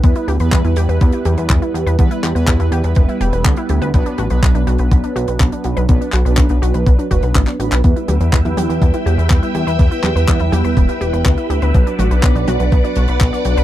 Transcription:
<<
  \new Staff \with { instrumentName = "String machine" } { \time 4/4 \key e \dorian \tempo 4 = 123 << { r1 | r1 | r1 | r1 |
<e'' g'' e'''>1~ | <e'' g'' e'''>1 | <d'' fis'' d'''>1 | } \\ { r1 | r1 | r1 | r1 |
b'1~ | b'1~ | b'1 | } >> }
  \new Staff \with { instrumentName = "Synth arpeggio sound" } { \time 4/4 \key e \dorian b16 e'16 g'16 b'16 b16 e'16 g'16 b'16 b16 e'16 g'16 b'16 b16 e'16 g'16 b'16 | b16 e'16 g'16 b'16 b16 e'16 g'16 b'16 b16 e'16 g'16 b'16 b16 e'16 g'16 b'16 | b16 d'16 fis'16 b'16 b16 d'16 fis'16 b'16 b16 d'16 fis'16 b'16 b16 d'16 fis'16 b'16 | b16 d'16 fis'16 b'16 b16 d'16 fis'16 b'16 b16 d'16 fis'16 b'16 b16 d'16 fis'16 b'16 |
b16 e'16 g'16 b'16 b16 e'16 g'16 b'16 b16 e'16 g'16 b'16 b16 e'16 g'16 b'16 | b16 e'16 g'16 b'16 b16 e'16 g'16 b'16 b16 e'16 g'16 b'16 b16 e'16 g'16 b'16 | b16 d'16 fis'16 b'16 b16 d'16 fis'16 b'16 b16 d'16 fis'16 b'16 b16 d'16 fis'16 b'16 | }
  \new Staff \with { instrumentName = "Analog polysynth" } { \time 4/4 \key e \dorian <g b e' b'>8. <g b e' b'>2.~ <g b e' b'>16 | <g b e' b'>8. <g b e' b'>2.~ <g b e' b'>16 | <fis b d' b'>8. <fis b d' b'>2.~ <fis b d' b'>16 | <fis b d' b'>8. <fis b d' b'>4.~ <fis b d' b'>16 <fis b d' b'>4 <fis b d' b'>8 |
<g b e' b'>8. <g b e' b'>2.~ <g b e' b'>16 | <g b e' b'>8. <g b e' b'>2.~ <g b e' b'>16 | <fis b d' b'>8. <fis b d' b'>2.~ <fis b d' b'>16 | }
  \new Staff \with { instrumentName = "Analog synth bass" } { \clef bass \time 4/4 \key e \dorian e,16 r16 d,16 e,16 e,16 e,16 e,16 e,16 e,16 r16 e,16 e,16 e,16 r16 e,16 e,16 | e,16 r16 e,16 e,16 e,16 e,16 e,16 e,16 e,,16 r16 e,,16 e,,16 d,16 r16 d,16 d,16 | b,,16 r16 a,,16 b,,16 b,,16 b,,16 b,,16 b,,16 b,,16 r16 b,,16 b,,16 b,,16 r16 b,,16 b,,16 | b,,16 r16 b,,16 b,,16 b,,16 b,,16 b,,16 b,,16 b,,16 r16 fis,,16 b,,16 a,,16 r16 a,,16 b,,16 |
e,16 r16 d,16 e,16 e,16 e,16 e,16 e,16 e,16 r16 e,16 e,16 e,16 r16 e,16 e,16 | e,16 r16 e,16 e,16 e,16 e,16 e,16 e,16 e,,16 r16 e,,16 e,,16 d,16 r16 d,16 d,16 | b,,16 r16 a,,16 b,,16 b,,16 b,,16 b,,16 b,,16 b,,16 r16 b,,16 b,,16 b,,16 r16 b,,16 b,,16 | }
  \new DrumStaff \with { instrumentName = "Drums" } \drummode { \time 4/4 <hh bd>16 hh16 hh16 hh16 <hc hh bd>16 hh16 hh16 hh16 <hh bd>16 hh16 hh16 hh16 <hc hh bd>16 hh16 hh16 hh16 | <hh bd>16 hh16 <hc hh>16 hh16 <hc hh bd>16 hh16 hh16 hh16 <hh bd>16 hh16 hh16 hh16 <hc hh bd>16 hh16 hh16 hh16 | <hh bd>16 hh16 hh16 hh16 <hc hh bd>16 hh16 hh16 hh16 <hh bd>16 hh16 hh16 hh16 <hc hh bd>16 hh16 hh16 hh16 | <hh bd>16 hh16 <hc hh>16 hh16 <hc hh bd>16 hh16 hh16 hh16 <hh bd>16 hh16 <hh bd>16 hh16 <hc hh bd>16 <hc hh>16 hh16 <hc hh>16 |
<hh bd>16 hh16 <hh tommh>16 hh16 <hc hh bd>16 <hh tommh>16 <hh tommh>16 hh16 <hh bd>16 hh16 hh16 hh16 <hc hh bd>16 hh16 hh16 hh16 | <hh bd>16 hh16 <hc hh tommh>16 hh16 <hc hh bd>16 <hh tommh>16 <hh tommh>16 hh16 <hh bd>16 hh16 hh16 hh16 <hc hh bd>16 hh16 hh16 hh16 | <hh bd>16 hh16 <hh tommh>16 hh16 <hc hh bd>16 <hh tommh>16 <hh tommh>16 hh16 <hh bd>16 hh16 hh16 hh16 <hc hh bd>16 hh16 hh16 hh16 | }
>>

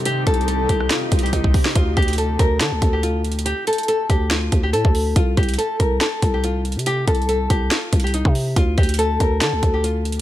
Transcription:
<<
  \new Staff \with { instrumentName = "Nylon-string guitar" } { \time 4/4 \key d \phrygian \tempo 4 = 141 g'8 a'8 a'8 g'8 f'8. g'16 ees'8 r8 | f'8 g'8 a'8 bes'8 a'8. g'16 f'8 r8 | g'8 a'8 a'8 g'8 f'8. g'16 a'8 r8 | f'8 g'8 a'8 bes'8 a'8. g'16 f'8 r8 |
g'8 a'8 a'8 g'8 f'8. g'16 ees'8 r8 | f'8 g'8 a'8 bes'8 a'8. g'16 f'8 r8 | }
  \new Staff \with { instrumentName = "Ambient pad" } { \time 4/4 \key d \phrygian <c c' ees' g'>1 | r1 | r1 | r1 |
r1 | r1 | }
  \new Staff \with { instrumentName = "808-style bass" } { \clef bass \time 4/4 \key d \phrygian c8 c,4 c,8 r8 c,8 c,8 r8 | d,8 d,4 d,8 d16 d,16 d,4.~ | d,16 r4 r16 d,4 d,8 a,16 d,8. | c,8 c,8 r8 c,8 r8 c,4~ c,16 c16~ |
c8 c,4 c,8 r8 c,8. c8. | d,8 d,4 d,8 d16 d,16 d,4. | }
  \new DrumStaff \with { instrumentName = "Drums" } \drummode { \time 4/4 \tuplet 3/2 { hh16 r16 r16 <hh bd>16 hh16 hh16 } hh8 <hh bd>16 ss16 \tuplet 3/2 { <hh sn>16 r16 r16 <hh bd>16 hh16 hh16 } <hh bd>16 bd16 <hho bd>16 sn16 | <hh bd>8 <hh bd>32 hh32 hh32 hh32 hh8 <hh bd>8 <hh sn>8 <hh bd>8 \tuplet 3/2 { hh16 r16 r16 hh16 hh16 hh16 } | hh8 hh32 hh32 hh32 hh32 hh8 <hh bd>8 <hh sn>8 <hh bd>8 hh16 bd16 hho8 | <hh bd>8 <hh bd>32 hh32 hh32 hh32 hh8 <hh bd>8 <hh sn>8 <hh bd>8 \tuplet 3/2 { hh16 r16 r16 hh16 hh16 hh16 } |
\tuplet 3/2 { hh16 r16 r16 <hh bd>16 hh16 hh16 } hh8 <hh bd>8 \tuplet 3/2 { <hh sn>16 r16 r16 <hh bd>16 hh16 hh16 } hh16 bd16 hho8 | <hh bd>8 <hh bd>32 hh32 hh32 hh32 hh8 <hh bd>8 <hh sn>8 <hh bd>8 \tuplet 3/2 { hh16 r16 r16 hh16 hh16 r16 } | }
>>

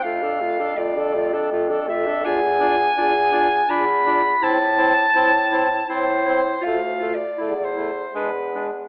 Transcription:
<<
  \new Staff \with { instrumentName = "Soprano saxophone" } { \time 3/4 \key a \minor \tempo 4 = 82 f''4 d''4 r8 e''8 | gis''2 b''4 | a''2 c''4 | \tuplet 3/2 { f''4 d''8~ d''8 c''4 } b'8 r8 | }
  \new Staff \with { instrumentName = "Clarinet" } { \time 3/4 \key a \minor f'16 a'16 f'16 a'16 f'16 a'16 f'16 a'16 f'16 a'16 f'16 a'16 | f'8 f'8 f'8 f'8 f'8 f'8 | e'8 e'8 e'8 e'8 e'8 e'8 | f'8 f'8 e'8 e'8 d'8 d'8 | }
  \new Staff \with { instrumentName = "Tenor saxophone" } { \time 3/4 \key a \minor a16 d'16 a16 d'16 a16 d'16 a16 d'16 a16 d'16 a16 d'16 | d'8 d'8 d'8 d'8 d'8 d'8 | c'8 c'8 c'8 c'8 c'8 c'8 | a8 a8 a8 a8 gis8 gis8 | }
  \new Staff \with { instrumentName = "Bass clarinet" } { \clef bass \time 3/4 \key a \minor f,2. | e,4 e,4 e,4 | a,4 a,4 a,4 | d,4 e,4 e,4 | }
>>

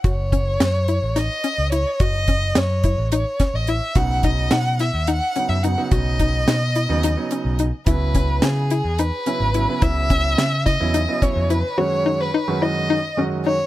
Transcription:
<<
  \new Staff \with { instrumentName = "Violin" } { \time 7/8 \key b \mixolydian \tempo 4 = 107 cis''2 dis''4 cis''8 | dis''4 cis''4 cis''8. dis''16 e''8 | fis''8 dis''8 fis''8 e''8 fis''8. e''16 fis''8 | dis''2. r8 |
b'4 gis'4 b'4. | e''4. dis''4 cis''8 b'8 | cis''8. b'8. dis''4 r8 cis''8 | }
  \new Staff \with { instrumentName = "Synth arpeggio sound" } { \time 7/8 \key b \mixolydian fis'8 cis'8 cis'8 e'8 dis'8 cis'8 e'8 | fis'8 cis'8 cis'8 e'8 dis'8 cis'8 e'8 | fis'8 dis'8 dis'8 e'8 dis'8 cis'8 dis'8 | fis'8 dis'8 dis'8 e'8 dis'8 cis'8 dis'8 |
e'8 cis'8 cis'8 e'8 dis'8 cis'8 e'8 | e'8 cis'8 cis'8 e'8 dis'8 cis'8 e'8 | fis'8 dis'8 dis'8 e'8 dis'8 cis'8 dis'8 | }
  \new Staff \with { instrumentName = "Grand piano" } { \clef bass \time 7/8 \key b \mixolydian r2. r8 | r2. r8 | <cis fis b dis'>4. r4 <cis fis b dis'>16 r16 <cis fis b dis'>16 <cis fis b dis'>16~ | <cis fis b dis'>4~ <cis fis b dis'>16 r8 <cis fis b dis'>16 r16 <cis fis b dis'>8. r8 |
<cis fis b e'>4. r4 <cis fis b e'>16 r16 <cis fis b e'>16 <cis fis b e'>16~ | <cis fis b e'>4~ <cis fis b e'>16 r8 <cis fis b e'>16 r16 <cis fis b e'>8. r8 | <fis, dis gis cis' fis'>8. r8 <fis, dis gis cis' fis'>8. r8 <fis, dis gis cis' fis'>8. r16 | }
  \new Staff \with { instrumentName = "Picked electric bass" } { \clef bass \time 7/8 \key b \mixolydian fis,,4 fis,8. a,,8 r8 cis,8 r16 | fis,,4 fis,8. a,,8 r8 a,,8 r16 | b,,4 b,8. dis,8 r8 fis,8 r16 | b,,4 b,8. dis,8 r8 b,,8 r16 |
cis,4 cis8. e,8 r8 gis,,8 r16 | cis,4 cis8. e,8 r8 eis,8 r16 | r2. r8 | }
  \new DrumStaff \with { instrumentName = "Drums" } \drummode { \time 7/8 <hh bd>8 <hh bd>8 <hh sn>8 hh8 <hh sn>8 hh8 hh8 | <hh bd>8 <hh bd>8 <hh sn>8 <hh bd>8 hh8 <hh bd sn>8 hh8 | <hh bd>8 <hh bd>8 <hh sn>8 <hh sn>8 hh8 hh8 hh8 | <hh bd>8 <hh bd>8 <hh sn>8 hh8 hh8 hh8 hh8 |
<hh bd>8 <hh bd>8 <hh sn>8 hh8 hh8 hh8 hh8 | <hh bd>8 <hh bd>8 <hh sn>8 <hh bd sn>8 hh8 <hh bd>8 hh8 | r4 r4 r4. | }
>>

